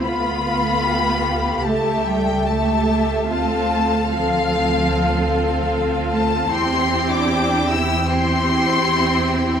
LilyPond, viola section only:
\new Staff \with { instrumentName = "Viola section" } { \time 4/4 \key d \dorian \tempo 4 = 75 << { f'2 g'4 g'4 | f'4 f'2. | e'2 e'2 | } \\ { a2 a4 a8 a8 | c'4 c'2. | c'2 c'2 | } >> }